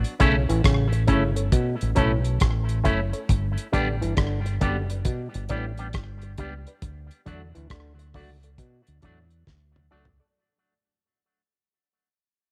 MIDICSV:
0, 0, Header, 1, 7, 480
1, 0, Start_track
1, 0, Tempo, 882353
1, 1790, Time_signature, 4, 2, 24, 8
1, 6810, End_track
2, 0, Start_track
2, 0, Title_t, "Synth stab"
2, 0, Program_c, 0, 62
2, 107, Note_on_c, 0, 61, 103
2, 108, Note_on_c, 0, 64, 88
2, 112, Note_on_c, 0, 69, 85
2, 115, Note_on_c, 0, 73, 106
2, 226, Note_off_c, 0, 61, 0
2, 226, Note_off_c, 0, 64, 0
2, 228, Note_off_c, 0, 69, 0
2, 230, Note_off_c, 0, 73, 0
2, 586, Note_on_c, 0, 61, 89
2, 588, Note_on_c, 0, 64, 87
2, 589, Note_on_c, 0, 69, 72
2, 592, Note_on_c, 0, 73, 106
2, 705, Note_off_c, 0, 61, 0
2, 706, Note_off_c, 0, 64, 0
2, 706, Note_off_c, 0, 69, 0
2, 708, Note_off_c, 0, 73, 0
2, 741, Note_on_c, 0, 69, 40
2, 741, Note_on_c, 0, 73, 49
2, 777, Note_off_c, 0, 69, 0
2, 778, Note_off_c, 0, 73, 0
2, 1062, Note_on_c, 0, 61, 84
2, 1065, Note_on_c, 0, 64, 91
2, 1067, Note_on_c, 0, 69, 87
2, 1069, Note_on_c, 0, 73, 102
2, 1183, Note_off_c, 0, 61, 0
2, 1184, Note_off_c, 0, 64, 0
2, 1185, Note_off_c, 0, 69, 0
2, 1186, Note_off_c, 0, 73, 0
2, 1543, Note_on_c, 0, 61, 89
2, 1547, Note_on_c, 0, 64, 77
2, 1550, Note_on_c, 0, 69, 74
2, 1552, Note_on_c, 0, 73, 100
2, 1663, Note_off_c, 0, 61, 0
2, 1665, Note_off_c, 0, 64, 0
2, 1667, Note_off_c, 0, 69, 0
2, 1667, Note_off_c, 0, 73, 0
2, 1703, Note_on_c, 0, 69, 47
2, 1704, Note_on_c, 0, 73, 44
2, 1738, Note_off_c, 0, 69, 0
2, 1739, Note_off_c, 0, 73, 0
2, 2028, Note_on_c, 0, 62, 104
2, 2031, Note_on_c, 0, 67, 89
2, 2032, Note_on_c, 0, 71, 84
2, 2036, Note_on_c, 0, 74, 109
2, 2146, Note_off_c, 0, 62, 0
2, 2147, Note_off_c, 0, 67, 0
2, 2148, Note_off_c, 0, 71, 0
2, 2150, Note_off_c, 0, 74, 0
2, 2509, Note_on_c, 0, 62, 81
2, 2511, Note_on_c, 0, 67, 90
2, 2514, Note_on_c, 0, 71, 83
2, 2515, Note_on_c, 0, 74, 107
2, 2626, Note_off_c, 0, 62, 0
2, 2627, Note_off_c, 0, 67, 0
2, 2628, Note_off_c, 0, 71, 0
2, 2629, Note_off_c, 0, 74, 0
2, 2667, Note_on_c, 0, 71, 46
2, 2667, Note_on_c, 0, 74, 44
2, 2700, Note_off_c, 0, 71, 0
2, 2700, Note_off_c, 0, 74, 0
2, 2989, Note_on_c, 0, 62, 89
2, 2992, Note_on_c, 0, 67, 80
2, 2993, Note_on_c, 0, 71, 82
2, 2996, Note_on_c, 0, 74, 106
2, 3106, Note_off_c, 0, 62, 0
2, 3107, Note_off_c, 0, 67, 0
2, 3108, Note_off_c, 0, 71, 0
2, 3109, Note_off_c, 0, 74, 0
2, 3471, Note_on_c, 0, 62, 85
2, 3472, Note_on_c, 0, 67, 91
2, 3475, Note_on_c, 0, 71, 79
2, 3478, Note_on_c, 0, 74, 101
2, 3587, Note_off_c, 0, 62, 0
2, 3587, Note_off_c, 0, 67, 0
2, 3589, Note_off_c, 0, 71, 0
2, 3590, Note_off_c, 0, 74, 0
2, 3629, Note_on_c, 0, 74, 43
2, 3630, Note_on_c, 0, 71, 40
2, 3661, Note_off_c, 0, 74, 0
2, 3662, Note_off_c, 0, 71, 0
2, 3950, Note_on_c, 0, 62, 97
2, 3954, Note_on_c, 0, 66, 82
2, 3954, Note_on_c, 0, 69, 80
2, 3957, Note_on_c, 0, 74, 107
2, 4066, Note_off_c, 0, 62, 0
2, 4068, Note_off_c, 0, 66, 0
2, 4068, Note_off_c, 0, 69, 0
2, 4070, Note_off_c, 0, 74, 0
2, 4430, Note_on_c, 0, 62, 94
2, 4432, Note_on_c, 0, 66, 84
2, 4435, Note_on_c, 0, 69, 88
2, 4437, Note_on_c, 0, 74, 105
2, 4546, Note_off_c, 0, 62, 0
2, 4547, Note_off_c, 0, 66, 0
2, 4549, Note_off_c, 0, 69, 0
2, 4550, Note_off_c, 0, 74, 0
2, 4590, Note_on_c, 0, 69, 41
2, 4590, Note_on_c, 0, 74, 43
2, 4622, Note_off_c, 0, 69, 0
2, 4622, Note_off_c, 0, 74, 0
2, 4909, Note_on_c, 0, 62, 93
2, 4910, Note_on_c, 0, 66, 73
2, 4913, Note_on_c, 0, 69, 77
2, 4914, Note_on_c, 0, 74, 97
2, 5026, Note_off_c, 0, 62, 0
2, 5026, Note_off_c, 0, 66, 0
2, 5028, Note_off_c, 0, 69, 0
2, 5029, Note_off_c, 0, 74, 0
2, 5390, Note_on_c, 0, 62, 92
2, 5391, Note_on_c, 0, 66, 86
2, 5392, Note_on_c, 0, 69, 85
2, 5396, Note_on_c, 0, 74, 110
2, 5506, Note_off_c, 0, 62, 0
2, 5507, Note_off_c, 0, 66, 0
2, 5507, Note_off_c, 0, 69, 0
2, 5509, Note_off_c, 0, 74, 0
2, 5548, Note_on_c, 0, 74, 47
2, 5549, Note_on_c, 0, 69, 46
2, 5581, Note_off_c, 0, 69, 0
2, 5581, Note_off_c, 0, 74, 0
2, 6810, End_track
3, 0, Start_track
3, 0, Title_t, "Clean electric guitar"
3, 0, Program_c, 1, 27
3, 106, Note_on_c, 1, 57, 89
3, 107, Note_on_c, 1, 64, 87
3, 108, Note_on_c, 1, 61, 96
3, 111, Note_on_c, 1, 69, 95
3, 189, Note_off_c, 1, 57, 0
3, 189, Note_off_c, 1, 64, 0
3, 190, Note_off_c, 1, 61, 0
3, 191, Note_off_c, 1, 69, 0
3, 583, Note_on_c, 1, 57, 75
3, 584, Note_on_c, 1, 61, 74
3, 587, Note_on_c, 1, 64, 78
3, 588, Note_on_c, 1, 69, 86
3, 667, Note_off_c, 1, 57, 0
3, 668, Note_off_c, 1, 61, 0
3, 669, Note_off_c, 1, 64, 0
3, 669, Note_off_c, 1, 69, 0
3, 1065, Note_on_c, 1, 57, 76
3, 1069, Note_on_c, 1, 61, 83
3, 1069, Note_on_c, 1, 64, 83
3, 1069, Note_on_c, 1, 69, 100
3, 1148, Note_off_c, 1, 57, 0
3, 1150, Note_off_c, 1, 61, 0
3, 1150, Note_off_c, 1, 64, 0
3, 1150, Note_off_c, 1, 69, 0
3, 1545, Note_on_c, 1, 57, 88
3, 1546, Note_on_c, 1, 61, 90
3, 1547, Note_on_c, 1, 64, 95
3, 1552, Note_on_c, 1, 69, 95
3, 1628, Note_off_c, 1, 57, 0
3, 1628, Note_off_c, 1, 61, 0
3, 1629, Note_off_c, 1, 64, 0
3, 1631, Note_off_c, 1, 69, 0
3, 2026, Note_on_c, 1, 55, 91
3, 2027, Note_on_c, 1, 59, 91
3, 2028, Note_on_c, 1, 62, 102
3, 2030, Note_on_c, 1, 67, 98
3, 2108, Note_off_c, 1, 55, 0
3, 2109, Note_off_c, 1, 59, 0
3, 2109, Note_off_c, 1, 62, 0
3, 2110, Note_off_c, 1, 67, 0
3, 2506, Note_on_c, 1, 55, 76
3, 2510, Note_on_c, 1, 59, 85
3, 2510, Note_on_c, 1, 62, 84
3, 2513, Note_on_c, 1, 67, 81
3, 2588, Note_off_c, 1, 55, 0
3, 2590, Note_off_c, 1, 59, 0
3, 2590, Note_off_c, 1, 62, 0
3, 2591, Note_off_c, 1, 67, 0
3, 2990, Note_on_c, 1, 55, 84
3, 2991, Note_on_c, 1, 59, 85
3, 2994, Note_on_c, 1, 62, 82
3, 2996, Note_on_c, 1, 67, 90
3, 3070, Note_off_c, 1, 55, 0
3, 3071, Note_off_c, 1, 59, 0
3, 3072, Note_off_c, 1, 62, 0
3, 3073, Note_off_c, 1, 67, 0
3, 3150, Note_on_c, 1, 67, 62
3, 3151, Note_on_c, 1, 62, 61
3, 3155, Note_on_c, 1, 55, 51
3, 3155, Note_on_c, 1, 59, 53
3, 3192, Note_off_c, 1, 62, 0
3, 3192, Note_off_c, 1, 67, 0
3, 3194, Note_off_c, 1, 55, 0
3, 3194, Note_off_c, 1, 59, 0
3, 3475, Note_on_c, 1, 55, 90
3, 3476, Note_on_c, 1, 59, 95
3, 3477, Note_on_c, 1, 62, 89
3, 3480, Note_on_c, 1, 67, 87
3, 3552, Note_off_c, 1, 55, 0
3, 3553, Note_off_c, 1, 59, 0
3, 3553, Note_off_c, 1, 62, 0
3, 3555, Note_off_c, 1, 67, 0
3, 3948, Note_on_c, 1, 54, 87
3, 3952, Note_on_c, 1, 57, 90
3, 3954, Note_on_c, 1, 62, 87
3, 3957, Note_on_c, 1, 66, 97
3, 4029, Note_off_c, 1, 54, 0
3, 4031, Note_off_c, 1, 57, 0
3, 4032, Note_off_c, 1, 62, 0
3, 4033, Note_off_c, 1, 66, 0
3, 4427, Note_on_c, 1, 54, 77
3, 4430, Note_on_c, 1, 57, 78
3, 4434, Note_on_c, 1, 62, 71
3, 4436, Note_on_c, 1, 66, 86
3, 4509, Note_off_c, 1, 54, 0
3, 4510, Note_off_c, 1, 57, 0
3, 4512, Note_off_c, 1, 62, 0
3, 4513, Note_off_c, 1, 66, 0
3, 4915, Note_on_c, 1, 54, 74
3, 4917, Note_on_c, 1, 57, 78
3, 4919, Note_on_c, 1, 62, 82
3, 4923, Note_on_c, 1, 66, 90
3, 4993, Note_off_c, 1, 54, 0
3, 4993, Note_off_c, 1, 57, 0
3, 4994, Note_off_c, 1, 62, 0
3, 4996, Note_off_c, 1, 66, 0
3, 5390, Note_on_c, 1, 54, 79
3, 5391, Note_on_c, 1, 57, 86
3, 5393, Note_on_c, 1, 62, 80
3, 5396, Note_on_c, 1, 66, 99
3, 5470, Note_off_c, 1, 54, 0
3, 5470, Note_off_c, 1, 57, 0
3, 5471, Note_off_c, 1, 62, 0
3, 5473, Note_off_c, 1, 66, 0
3, 6810, End_track
4, 0, Start_track
4, 0, Title_t, "Clav"
4, 0, Program_c, 2, 7
4, 112, Note_on_c, 2, 49, 69
4, 235, Note_off_c, 2, 49, 0
4, 267, Note_on_c, 2, 52, 70
4, 335, Note_off_c, 2, 52, 0
4, 350, Note_on_c, 2, 49, 76
4, 474, Note_off_c, 2, 49, 0
4, 588, Note_on_c, 2, 49, 69
4, 713, Note_off_c, 2, 49, 0
4, 830, Note_on_c, 2, 47, 83
4, 954, Note_off_c, 2, 47, 0
4, 1069, Note_on_c, 2, 45, 74
4, 1193, Note_off_c, 2, 45, 0
4, 2030, Note_on_c, 2, 50, 66
4, 2153, Note_off_c, 2, 50, 0
4, 2184, Note_on_c, 2, 52, 71
4, 2253, Note_off_c, 2, 52, 0
4, 2267, Note_on_c, 2, 50, 82
4, 2392, Note_off_c, 2, 50, 0
4, 2509, Note_on_c, 2, 50, 75
4, 2633, Note_off_c, 2, 50, 0
4, 2747, Note_on_c, 2, 47, 80
4, 2872, Note_off_c, 2, 47, 0
4, 2989, Note_on_c, 2, 45, 78
4, 3113, Note_off_c, 2, 45, 0
4, 3951, Note_on_c, 2, 50, 81
4, 4074, Note_off_c, 2, 50, 0
4, 4106, Note_on_c, 2, 52, 69
4, 4174, Note_off_c, 2, 52, 0
4, 4190, Note_on_c, 2, 50, 83
4, 4313, Note_off_c, 2, 50, 0
4, 4430, Note_on_c, 2, 50, 80
4, 4553, Note_off_c, 2, 50, 0
4, 4670, Note_on_c, 2, 47, 77
4, 4793, Note_off_c, 2, 47, 0
4, 4913, Note_on_c, 2, 45, 73
4, 5035, Note_off_c, 2, 45, 0
4, 6810, End_track
5, 0, Start_track
5, 0, Title_t, "Fingered electric bass"
5, 0, Program_c, 3, 33
5, 117, Note_on_c, 3, 35, 80
5, 257, Note_off_c, 3, 35, 0
5, 271, Note_on_c, 3, 33, 88
5, 347, Note_off_c, 3, 33, 0
5, 354, Note_on_c, 3, 33, 94
5, 574, Note_off_c, 3, 33, 0
5, 591, Note_on_c, 3, 31, 88
5, 812, Note_off_c, 3, 31, 0
5, 992, Note_on_c, 3, 33, 84
5, 1068, Note_off_c, 3, 33, 0
5, 1076, Note_on_c, 3, 35, 93
5, 1295, Note_off_c, 3, 35, 0
5, 1316, Note_on_c, 3, 33, 99
5, 1535, Note_off_c, 3, 33, 0
5, 1556, Note_on_c, 3, 30, 98
5, 1696, Note_off_c, 3, 30, 0
5, 1794, Note_on_c, 3, 31, 107
5, 1935, Note_off_c, 3, 31, 0
5, 2034, Note_on_c, 3, 33, 71
5, 2175, Note_off_c, 3, 33, 0
5, 2188, Note_on_c, 3, 31, 92
5, 2266, Note_off_c, 3, 31, 0
5, 2273, Note_on_c, 3, 31, 94
5, 2493, Note_off_c, 3, 31, 0
5, 2515, Note_on_c, 3, 30, 87
5, 2734, Note_off_c, 3, 30, 0
5, 2910, Note_on_c, 3, 31, 80
5, 2986, Note_off_c, 3, 31, 0
5, 2995, Note_on_c, 3, 33, 95
5, 3214, Note_off_c, 3, 33, 0
5, 3236, Note_on_c, 3, 31, 94
5, 3455, Note_off_c, 3, 31, 0
5, 3478, Note_on_c, 3, 37, 97
5, 3617, Note_off_c, 3, 37, 0
5, 3715, Note_on_c, 3, 38, 100
5, 3855, Note_off_c, 3, 38, 0
5, 3956, Note_on_c, 3, 40, 78
5, 4096, Note_off_c, 3, 40, 0
5, 4115, Note_on_c, 3, 38, 97
5, 4189, Note_off_c, 3, 38, 0
5, 4195, Note_on_c, 3, 38, 97
5, 4414, Note_off_c, 3, 38, 0
5, 4435, Note_on_c, 3, 37, 85
5, 4654, Note_off_c, 3, 37, 0
5, 4832, Note_on_c, 3, 38, 72
5, 4907, Note_off_c, 3, 38, 0
5, 4918, Note_on_c, 3, 40, 103
5, 5136, Note_off_c, 3, 40, 0
5, 5154, Note_on_c, 3, 38, 93
5, 5374, Note_off_c, 3, 38, 0
5, 5401, Note_on_c, 3, 37, 87
5, 5538, Note_off_c, 3, 37, 0
5, 6810, End_track
6, 0, Start_track
6, 0, Title_t, "Muted clean electric guitar strokes"
6, 500, Note_on_c, 9, 29, 55
6, 554, Note_off_c, 9, 29, 0
6, 2422, Note_on_c, 9, 29, 52
6, 2477, Note_off_c, 9, 29, 0
6, 3389, Note_on_c, 9, 29, 49
6, 3444, Note_off_c, 9, 29, 0
6, 4342, Note_on_c, 9, 29, 47
6, 4397, Note_off_c, 9, 29, 0
6, 5308, Note_on_c, 9, 29, 47
6, 5363, Note_off_c, 9, 29, 0
6, 6810, End_track
7, 0, Start_track
7, 0, Title_t, "Drums"
7, 24, Note_on_c, 9, 42, 52
7, 78, Note_off_c, 9, 42, 0
7, 108, Note_on_c, 9, 42, 77
7, 111, Note_on_c, 9, 36, 89
7, 163, Note_off_c, 9, 42, 0
7, 166, Note_off_c, 9, 36, 0
7, 269, Note_on_c, 9, 42, 55
7, 324, Note_off_c, 9, 42, 0
7, 350, Note_on_c, 9, 36, 101
7, 350, Note_on_c, 9, 42, 74
7, 356, Note_on_c, 9, 37, 123
7, 404, Note_off_c, 9, 36, 0
7, 404, Note_off_c, 9, 42, 0
7, 411, Note_off_c, 9, 37, 0
7, 503, Note_on_c, 9, 42, 48
7, 558, Note_off_c, 9, 42, 0
7, 585, Note_on_c, 9, 42, 84
7, 589, Note_on_c, 9, 36, 83
7, 640, Note_off_c, 9, 42, 0
7, 643, Note_off_c, 9, 36, 0
7, 742, Note_on_c, 9, 42, 63
7, 796, Note_off_c, 9, 42, 0
7, 828, Note_on_c, 9, 36, 101
7, 828, Note_on_c, 9, 42, 92
7, 882, Note_off_c, 9, 42, 0
7, 883, Note_off_c, 9, 36, 0
7, 985, Note_on_c, 9, 42, 50
7, 1039, Note_off_c, 9, 42, 0
7, 1065, Note_on_c, 9, 42, 67
7, 1072, Note_on_c, 9, 36, 82
7, 1120, Note_off_c, 9, 42, 0
7, 1126, Note_off_c, 9, 36, 0
7, 1221, Note_on_c, 9, 42, 50
7, 1276, Note_off_c, 9, 42, 0
7, 1306, Note_on_c, 9, 42, 82
7, 1313, Note_on_c, 9, 36, 112
7, 1315, Note_on_c, 9, 37, 93
7, 1361, Note_off_c, 9, 42, 0
7, 1367, Note_off_c, 9, 36, 0
7, 1370, Note_off_c, 9, 37, 0
7, 1462, Note_on_c, 9, 42, 46
7, 1517, Note_off_c, 9, 42, 0
7, 1550, Note_on_c, 9, 42, 63
7, 1552, Note_on_c, 9, 36, 94
7, 1605, Note_off_c, 9, 42, 0
7, 1607, Note_off_c, 9, 36, 0
7, 1705, Note_on_c, 9, 42, 50
7, 1759, Note_off_c, 9, 42, 0
7, 1791, Note_on_c, 9, 36, 104
7, 1791, Note_on_c, 9, 42, 94
7, 1845, Note_off_c, 9, 36, 0
7, 1845, Note_off_c, 9, 42, 0
7, 1945, Note_on_c, 9, 42, 55
7, 2000, Note_off_c, 9, 42, 0
7, 2032, Note_on_c, 9, 36, 90
7, 2032, Note_on_c, 9, 42, 72
7, 2087, Note_off_c, 9, 36, 0
7, 2087, Note_off_c, 9, 42, 0
7, 2188, Note_on_c, 9, 42, 55
7, 2243, Note_off_c, 9, 42, 0
7, 2267, Note_on_c, 9, 42, 68
7, 2270, Note_on_c, 9, 36, 110
7, 2274, Note_on_c, 9, 37, 120
7, 2322, Note_off_c, 9, 42, 0
7, 2324, Note_off_c, 9, 36, 0
7, 2328, Note_off_c, 9, 37, 0
7, 2425, Note_on_c, 9, 42, 44
7, 2480, Note_off_c, 9, 42, 0
7, 2509, Note_on_c, 9, 42, 76
7, 2510, Note_on_c, 9, 36, 84
7, 2563, Note_off_c, 9, 42, 0
7, 2565, Note_off_c, 9, 36, 0
7, 2664, Note_on_c, 9, 42, 56
7, 2718, Note_off_c, 9, 42, 0
7, 2746, Note_on_c, 9, 42, 88
7, 2749, Note_on_c, 9, 36, 110
7, 2800, Note_off_c, 9, 42, 0
7, 2803, Note_off_c, 9, 36, 0
7, 2906, Note_on_c, 9, 42, 53
7, 2960, Note_off_c, 9, 42, 0
7, 2985, Note_on_c, 9, 42, 62
7, 2992, Note_on_c, 9, 36, 74
7, 3039, Note_off_c, 9, 42, 0
7, 3047, Note_off_c, 9, 36, 0
7, 3142, Note_on_c, 9, 42, 53
7, 3196, Note_off_c, 9, 42, 0
7, 3226, Note_on_c, 9, 42, 77
7, 3233, Note_on_c, 9, 36, 115
7, 3236, Note_on_c, 9, 37, 95
7, 3281, Note_off_c, 9, 42, 0
7, 3287, Note_off_c, 9, 36, 0
7, 3290, Note_off_c, 9, 37, 0
7, 3381, Note_on_c, 9, 42, 43
7, 3436, Note_off_c, 9, 42, 0
7, 3469, Note_on_c, 9, 42, 64
7, 3472, Note_on_c, 9, 36, 76
7, 3523, Note_off_c, 9, 42, 0
7, 3526, Note_off_c, 9, 36, 0
7, 3627, Note_on_c, 9, 42, 51
7, 3681, Note_off_c, 9, 42, 0
7, 3710, Note_on_c, 9, 42, 107
7, 3711, Note_on_c, 9, 36, 114
7, 3765, Note_off_c, 9, 42, 0
7, 3766, Note_off_c, 9, 36, 0
7, 3867, Note_on_c, 9, 42, 53
7, 3921, Note_off_c, 9, 42, 0
7, 3952, Note_on_c, 9, 36, 82
7, 3952, Note_on_c, 9, 42, 72
7, 4006, Note_off_c, 9, 36, 0
7, 4007, Note_off_c, 9, 42, 0
7, 4108, Note_on_c, 9, 42, 51
7, 4163, Note_off_c, 9, 42, 0
7, 4189, Note_on_c, 9, 42, 69
7, 4190, Note_on_c, 9, 36, 110
7, 4195, Note_on_c, 9, 37, 106
7, 4243, Note_off_c, 9, 42, 0
7, 4245, Note_off_c, 9, 36, 0
7, 4250, Note_off_c, 9, 37, 0
7, 4347, Note_on_c, 9, 42, 44
7, 4401, Note_off_c, 9, 42, 0
7, 4429, Note_on_c, 9, 46, 74
7, 4430, Note_on_c, 9, 36, 95
7, 4483, Note_off_c, 9, 46, 0
7, 4485, Note_off_c, 9, 36, 0
7, 4586, Note_on_c, 9, 42, 61
7, 4641, Note_off_c, 9, 42, 0
7, 4669, Note_on_c, 9, 36, 108
7, 4669, Note_on_c, 9, 42, 98
7, 4723, Note_off_c, 9, 36, 0
7, 4724, Note_off_c, 9, 42, 0
7, 4824, Note_on_c, 9, 42, 58
7, 4879, Note_off_c, 9, 42, 0
7, 4907, Note_on_c, 9, 42, 66
7, 4912, Note_on_c, 9, 36, 76
7, 4961, Note_off_c, 9, 42, 0
7, 4967, Note_off_c, 9, 36, 0
7, 5062, Note_on_c, 9, 42, 49
7, 5116, Note_off_c, 9, 42, 0
7, 5152, Note_on_c, 9, 36, 108
7, 5153, Note_on_c, 9, 38, 52
7, 5207, Note_off_c, 9, 36, 0
7, 5207, Note_off_c, 9, 38, 0
7, 5310, Note_on_c, 9, 45, 72
7, 5364, Note_off_c, 9, 45, 0
7, 5468, Note_on_c, 9, 43, 99
7, 5523, Note_off_c, 9, 43, 0
7, 6810, End_track
0, 0, End_of_file